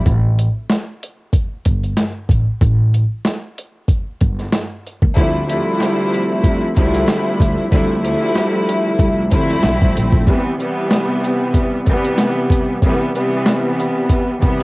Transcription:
0.06 0.47 A1 loud
0.06 kick loud
0.06 closed hi-hat medium
0.39 closed hi-hat medium
0.70 snare loud
0.70 closed hi-hat medium
1.03 closed hi-hat medium
1.33 kick medium
1.33 closed hi-hat loud
1.65 1.92 G1 medium
1.65 kick medium
1.65 closed hi-hat medium
1.84 closed hi-hat medium
1.97 snare loud
1.97 closed hi-hat loud
2.29 2.44 A1 medium
2.29 kick loud
2.29 closed hi-hat medium
2.61 3.02 A1 loud
2.61 kick loud
2.61 closed hi-hat medium
2.94 closed hi-hat medium
3.25 snare loud
3.25 closed hi-hat medium
3.58 closed hi-hat medium
3.88 kick loud
3.88 closed hi-hat loud
4.21 4.47 G1 medium
4.21 kick medium
4.21 closed hi-hat medium
4.39 snare soft
4.39 closed hi-hat medium
4.52 snare loud
4.52 closed hi-hat loud
4.86 closed hi-hat medium
5.02 5.14 D#2 medium
5.02 kick loud
5.15 5.46 D2 loud
5.15 5.57 D2 loud
5.15 5.46 C3 medium
5.15 5.46 F3 medium
5.15 5.46 G3 medium
5.15 5.46 A3 medium
5.15 5.46 E4 loud
5.15 kick loud
5.15 closed hi-hat medium
5.47 6.66 D2 loud
5.47 6.66 C3 loud
5.47 6.67 F3 loud
5.47 6.67 G3 medium
5.47 6.67 A3 medium
5.47 6.67 E4 loud
5.47 closed hi-hat medium
5.80 snare loud
5.80 closed hi-hat medium
6.14 closed hi-hat medium
6.44 kick loud
6.44 closed hi-hat medium
6.76 7.02 C2 medium
6.76 7.65 D2 loud
6.76 7.65 C3 medium
6.76 7.65 F3 loud
6.76 7.65 G3 loud
6.76 7.66 A3 medium
6.76 7.66 E4 loud
6.76 kick medium
6.76 closed hi-hat medium
6.94 closed hi-hat medium
7.08 snare loud
7.08 closed hi-hat loud
7.40 7.55 D2 medium
7.40 kick loud
7.40 closed hi-hat medium
7.72 8.00 D2 medium
7.72 8.13 D2 loud
7.72 8.00 C3 medium
7.72 8.00 F3 medium
7.72 8.01 G3 medium
7.72 8.01 A3 medium
7.72 8.01 E4 loud
7.72 kick loud
7.72 closed hi-hat medium
8.01 9.21 D2 loud
8.01 9.21 C3 medium
8.01 9.21 F3 medium
8.01 9.21 G3 medium
8.01 9.22 A3 medium
8.01 9.22 E4 loud
8.01 closed hi-hat medium
8.35 snare loud
8.35 closed hi-hat medium
8.69 closed hi-hat medium
8.99 9.32 C2 medium
8.99 kick loud
8.99 closed hi-hat medium
9.31 10.20 D2 medium
9.31 9.58 D2 medium
9.31 10.20 F3 medium
9.31 10.20 G3 medium
9.31 10.21 A3 medium
9.31 10.20 C4 medium
9.31 10.21 E4 loud
9.31 kick medium
9.31 closed hi-hat medium
9.50 snare soft
9.50 closed hi-hat medium
9.63 9.89 B1 medium
9.63 snare loud
9.63 closed hi-hat loud
9.82 kick loud
9.95 10.21 A#1 medium
9.95 closed hi-hat medium
10.13 kick loud
10.27 10.57 C3 loud
10.27 10.57 E3 medium
10.27 10.57 G3 medium
10.27 10.57 B3 loud
10.27 kick loud
10.27 closed hi-hat medium
10.59 11.78 C3 loud
10.59 11.78 E3 loud
10.59 11.78 G3 loud
10.59 11.78 B3 loud
10.59 closed hi-hat medium
10.91 snare loud
10.91 closed hi-hat medium
11.24 closed hi-hat medium
11.54 kick medium
11.54 closed hi-hat medium
11.86 12.75 C3 loud
11.86 12.76 E3 medium
11.86 12.76 G3 medium
11.86 12.76 B3 loud
11.86 kick medium
11.86 closed hi-hat medium
12.05 closed hi-hat medium
12.18 snare loud
12.18 closed hi-hat loud
12.50 kick loud
12.50 closed hi-hat medium
12.82 13.12 C3 medium
12.82 13.13 E3 medium
12.82 13.13 G3 loud
12.82 13.13 B3 loud
12.82 kick loud
12.82 closed hi-hat medium
13.13 14.33 C3 loud
13.13 14.33 E3 loud
13.13 14.33 G3 medium
13.13 14.33 B3 loud
13.13 closed hi-hat medium
13.46 snare loud
13.46 closed hi-hat medium
13.80 closed hi-hat medium
14.10 kick medium
14.10 closed hi-hat medium
14.40 14.63 C3 loud
14.40 14.63 E3 medium
14.40 14.63 G3 medium
14.40 14.63 B3 loud
14.40 kick medium
14.40 closed hi-hat medium

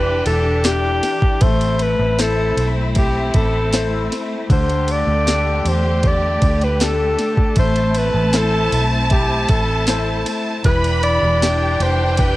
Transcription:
0.00 0.22 F1 medium
0.00 1.38 E3 medium
0.00 0.65 D4 soft
0.00 1.39 D4 medium
0.00 0.65 E4 soft
0.00 0.66 G4 medium
0.00 1.38 G4 medium
0.00 0.26 B4 loud
0.26 0.99 E1 medium
0.26 0.67 A4 medium
0.26 ride medium
0.64 1.40 D4 medium
0.64 1.40 E4 soft
0.64 1.44 G4 medium
0.64 1.40 G4 medium
0.64 snare loud
0.64 ride medium
1.03 snare soft
1.03 ride medium
1.22 kick loud
1.41 1.95 A1 medium
1.41 10.61 A3 medium
1.41 4.45 A3 medium
1.41 4.46 C4 medium
1.41 4.46 E4 medium
1.41 1.83 C5 loud
1.41 kick loud
1.41 ride medium
1.61 ride soft
1.79 2.22 B4 medium
1.79 ride medium
1.99 2.53 A1 loud
2.18 2.93 E4 medium
2.18 2.93 A4 soft
2.18 2.69 A4 loud
2.18 2.93 C5 medium
2.18 snare medium
2.18 ride medium
2.57 3.30 B1 medium
2.57 ride medium
2.95 3.38 G4 medium
2.95 kick medium
2.95 ride medium
3.34 4.07 A1 medium
3.34 4.12 A4 medium
3.34 kick medium
3.34 ride medium
3.73 4.48 E4 soft
3.73 4.48 A4 soft
3.73 4.48 C5 medium
3.73 snare medium
3.73 ride medium
4.12 snare soft
4.12 ride medium
4.49 5.03 D2 medium
4.49 7.54 D3 medium
4.49 7.53 D3 medium
4.49 7.54 G4 medium
4.49 4.93 C5 medium
4.49 kick loud
4.49 ride medium
4.69 ride soft
4.88 5.59 D5 loud
4.88 ride medium
5.07 5.61 D2 loud
5.27 6.01 D4 medium
5.27 6.01 G4 soft
5.27 6.01 A4 soft
5.27 snare medium
5.27 ride medium
5.59 5.70 D5 medium
5.65 6.38 E2 medium
5.65 6.09 C5 medium
5.65 ride medium
6.03 kick medium
6.03 ride medium
6.07 6.65 D5 loud
6.42 7.15 D2 loud
6.42 kick medium
6.42 ride medium
6.61 6.85 B4 medium
6.61 ride soft
6.80 7.55 D4 soft
6.80 7.55 G4 soft
6.80 7.55 A4 soft
6.80 7.58 A4 medium
6.80 snare loud
6.80 ride medium
7.19 snare soft
7.19 ride medium
7.37 kick loud
7.56 8.11 A1 loud
7.56 10.61 A3 medium
7.56 10.61 C4 medium
7.56 10.62 E4 medium
7.56 7.99 C5 medium
7.56 10.61 A5 loud
7.56 kick loud
7.56 ride medium
7.76 ride soft
7.95 8.38 B4 medium
7.95 ride medium
8.14 8.68 A1 medium
8.33 9.09 E4 soft
8.33 9.09 A4 soft
8.33 8.85 A4 loud
8.33 9.09 C5 medium
8.33 snare medium
8.33 ride medium
8.72 9.45 B1 medium
8.72 ride medium
9.10 9.52 G4 medium
9.10 kick medium
9.10 ride medium
9.49 10.22 A1 medium
9.49 10.27 A4 medium
9.49 kick medium
9.49 ride medium
9.87 10.63 E4 soft
9.87 10.63 A4 soft
9.87 10.63 C5 medium
9.87 snare loud
9.87 ride medium
10.26 snare soft
10.26 ride medium
10.63 11.18 E1 medium
10.63 12.37 E3 medium
10.63 12.37 D4 medium
10.63 12.37 G4 medium
10.63 11.01 B4 loud
10.63 11.41 B5 loud
10.63 kick loud
10.63 ride medium
10.84 ride soft
11.03 11.84 D5 loud
11.03 ride medium
11.22 11.76 E1 medium
11.41 12.16 D4 soft
11.41 12.17 E4 soft
11.41 12.17 G4 medium
11.41 12.37 G5 loud
11.41 snare loud
11.41 ride medium
11.80 12.37 F1 loud
11.80 12.22 C5 loud
11.80 ride medium
12.17 12.37 B4 medium
12.17 kick medium
12.17 ride medium

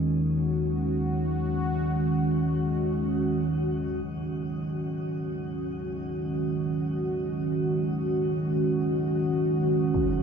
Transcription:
0.00 4.04 D#2 medium
0.00 4.04 D#3 medium
0.00 10.23 D#3 medium
0.00 10.23 G#3 medium
0.00 10.23 C#4 medium
0.00 10.23 F#4 medium
4.05 10.23 D#2 medium
4.05 10.23 D#3 medium
9.94 impact medium

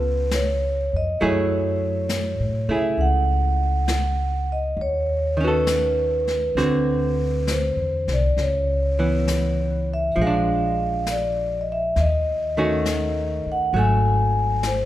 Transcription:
0.00 0.88 C#2 medium
0.00 1.19 B3 soft
0.00 1.21 F4 soft
0.00 1.22 A4 soft
0.00 0.39 B4 medium
0.31 0.96 C#5 medium
0.31 snare soft
0.31 hi-hat pedal soft
0.93 1.19 F2 soft
0.93 1.23 D#5 medium
1.20 2.36 F#2 medium
1.20 4.78 F#3 soft
1.20 2.68 A3 soft
1.20 2.69 E4 soft
1.20 2.70 G#4 soft
1.20 brush sweep soft
1.24 2.77 C#5 medium
2.09 snare soft
2.09 hi-hat pedal soft
2.40 2.67 A2 soft
2.68 2.96 C#3 soft
2.68 4.77 A3 soft
2.68 4.78 E4 soft
2.68 4.79 G#4 soft
2.74 3.01 E5 medium
2.98 4.73 C#2 medium
2.98 4.55 F#5 medium
2.98 brush sweep soft
3.88 snare soft
3.88 hi-hat pedal soft
4.52 4.79 D#5 medium
4.77 6.52 D#2 medium
4.77 brush sweep soft
4.81 5.37 C#5 medium
5.37 6.56 D#3 soft
5.37 6.57 C#4 soft
5.43 6.56 F#4 soft
5.43 7.55 B4 medium
5.48 6.61 A4 soft
5.67 snare soft
5.67 hi-hat pedal soft
6.27 snare soft
6.55 7.72 D2 medium
6.55 8.38 D3 soft
6.55 8.38 C4 soft
6.55 8.38 F#4 soft
6.55 brush sweep soft
6.55 snare soft
7.47 8.13 C5 medium
7.47 snare soft
7.47 hi-hat pedal soft
7.76 8.05 E2 soft
8.07 8.35 C2 soft
8.07 snare soft
8.13 8.40 D5 medium
8.37 10.13 C#2 medium
8.37 brush sweep soft
8.37 snare soft
8.42 9.88 C#5 medium
8.99 10.15 E3 soft
8.99 10.17 B3 soft
9.28 snare soft
9.28 hi-hat pedal soft
9.94 10.20 E5 medium
10.16 11.91 A#1 medium
10.16 11.95 F3 soft
10.16 brush sweep soft
10.22 11.98 G#3 soft
10.22 11.11 F5 medium
10.27 12.01 D4 soft
11.06 snare soft
11.06 hi-hat pedal soft
11.11 11.62 D5 medium
11.61 11.69 D#5 soft
11.72 11.99 E5 medium
11.96 13.43 D#2 medium
11.96 brush sweep soft
11.96 snare soft
12.00 13.53 D#5 medium
12.57 13.73 D#3 soft
12.57 13.75 A3 soft
12.57 13.75 C#4 soft
12.57 13.75 F#4 soft
12.86 snare soft
12.86 hi-hat pedal soft
13.46 muted upright bass stroke soft
13.52 13.78 F#5 medium
13.73 14.85 G#1 medium
13.73 14.85 F#3 soft
13.73 14.85 A3 soft
13.73 brush sweep soft
13.78 14.68 G#5 medium
14.63 14.85 C5 medium
14.63 snare soft
14.63 hi-hat pedal soft

